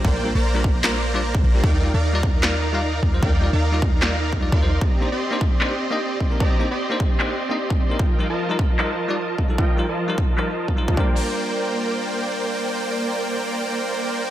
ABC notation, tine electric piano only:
X:1
M:4/4
L:1/16
Q:"Swing 16ths" 1/4=151
K:Bb
V:1 name="Tine electric piano"
z2 [G,DFB] z2 [G,DFB] z2 [G,DFB] z2 [G,DFd] z3 [G,DFG] | z2 [G,EFd] z2 [G,EFd] z2 [G,EFd] z2 [G,EFf] z3 [G,EFc] | z2 [G,EFd] z2 [G,EFd] z2 [G,EFd] z3 [G,EFd] z [G,EFc] z | z2 [B,DEc] z2 [B,DEc] z2 [B,DEc] z2 [B,DEe] z3 [B,DEB] |
z2 [B,DEc] z2 [B,DEc] z2 [B,DEc] z2 [B,DEe] z3 [B,DEB] | z2 [G,EFB] z2 [G,EFB] z2 [G,EFB] z2 [G,EFd] z3 [G,EFA] | z2 [G,EFB] z2 [G,EFB] z2 [G,EFB] z3 [G,EFB] z [G,DFB]2- | [G,DFB]16- |
[G,DFB]16 |]